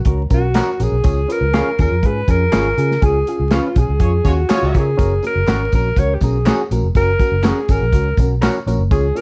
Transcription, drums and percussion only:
0.05 kick, closed hi-hat
0.30 kick, closed hi-hat, tambourine
0.54 snare, clap, closed hi-hat, tambourine
0.80 closed hi-hat, tambourine
1.04 kick, closed hi-hat, tambourine
1.30 closed hi-hat, tambourine
1.53 snare, clap, closed hi-hat, tambourine
1.79 kick, closed hi-hat, tambourine
2.03 kick, closed hi-hat
2.28 kick, closed hi-hat, tambourine
2.52 snare, clap, closed hi-hat, tambourine
2.77 closed hi-hat, tambourine
2.91 snare
3.02 kick, closed hi-hat, tambourine
3.27 closed hi-hat, tambourine
3.51 snare, clap, closed hi-hat, tambourine
3.75 kick, closed hi-hat, tambourine
4.00 kick, closed hi-hat
4.25 kick, closed hi-hat, tambourine
4.49 snare, clap, closed hi-hat, tambourine
4.74 kick, closed hi-hat, tambourine
4.99 kick, closed hi-hat, tambourine, muted conga
5.22 closed hi-hat, tambourine, muted conga
5.47 snare, clap, closed hi-hat, tambourine, high conga
5.72 kick, closed hi-hat, tambourine, low conga
5.96 kick, closed hi-hat, tambourine, muted conga, low conga
6.21 kick, closed hi-hat, tambourine, muted conga
6.46 snare, clap, closed hi-hat, tambourine, high conga
6.71 closed hi-hat, tambourine, high conga
6.95 kick, closed hi-hat, tambourine, muted conga
7.19 kick, closed hi-hat, tambourine, muted conga
7.43 snare, clap, closed hi-hat, tambourine, high conga
7.68 kick, closed hi-hat, tambourine
7.93 kick, closed hi-hat, tambourine
8.17 kick, closed hi-hat, tambourine, muted conga, low conga
8.42 snare, clap, closed hi-hat, tambourine, high conga
8.67 closed hi-hat, tambourine, high conga
8.91 kick, closed hi-hat, tambourine, muted conga
9.16 closed hi-hat, tambourine, muted conga

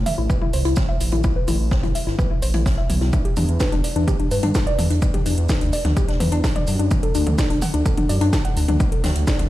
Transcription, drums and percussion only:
0.06 open hi-hat, mid tom, shaker
0.30 kick, shaker
0.42 mid tom
0.53 open hi-hat, shaker
0.65 closed hi-hat
0.76 kick, snare, mid tom, shaker
1.01 open hi-hat, shaker
1.12 closed hi-hat, mid tom
1.24 kick, shaker
1.48 open hi-hat, mid tom, shaker
1.71 kick, snare, shaker
1.83 closed hi-hat, mid tom
1.95 open hi-hat, shaker
2.07 snare
2.19 kick, mid tom, shaker
2.42 open hi-hat, shaker
2.54 closed hi-hat, mid tom
2.66 kick, snare, open hi-hat, shaker
2.90 open hi-hat, mid tom, shaker
3.01 snare
3.13 kick, closed hi-hat, shaker
3.25 closed hi-hat
3.36 open hi-hat, mid tom, shaker
3.49 closed hi-hat
3.60 kick, snare, closed hi-hat, shaker
3.72 closed hi-hat, mid tom
3.84 open hi-hat, shaker
3.96 closed hi-hat
4.08 kick, closed hi-hat, mid tom, shaker
4.20 closed hi-hat
4.31 open hi-hat, shaker
4.43 closed hi-hat, mid tom
4.55 kick, snare, closed hi-hat, shaker
4.67 closed hi-hat
4.79 open hi-hat, mid tom, shaker
4.90 closed hi-hat
5.02 kick, closed hi-hat, shaker
5.14 closed hi-hat, mid tom
5.26 open hi-hat, shaker
5.38 closed hi-hat
5.49 kick, snare, closed hi-hat, mid tom, shaker
5.61 closed hi-hat
5.73 open hi-hat, shaker
5.85 snare, closed hi-hat, mid tom
5.97 kick, closed hi-hat, shaker
6.09 snare, closed hi-hat
6.20 open hi-hat, mid tom, shaker
6.32 closed hi-hat
6.44 kick, snare, open hi-hat, shaker
6.56 closed hi-hat, mid tom
6.67 open hi-hat, shaker
6.79 closed hi-hat
6.91 kick, closed hi-hat, mid tom, shaker
7.03 closed hi-hat
7.15 open hi-hat, shaker
7.27 closed hi-hat, mid tom
7.38 kick, snare, closed hi-hat, shaker
7.50 closed hi-hat
7.62 open hi-hat, mid tom, shaker
7.74 closed hi-hat
7.86 kick, closed hi-hat, shaker
7.98 closed hi-hat, mid tom
8.09 open hi-hat, shaker
8.21 closed hi-hat
8.33 kick, snare, closed hi-hat, mid tom, shaker
8.45 closed hi-hat
8.57 open hi-hat, shaker
8.69 closed hi-hat, mid tom
8.80 kick, closed hi-hat, shaker
8.92 closed hi-hat
9.04 snare, open hi-hat, mid tom, shaker
9.16 closed hi-hat
9.27 kick, snare, closed hi-hat, shaker
9.39 closed hi-hat, mid tom

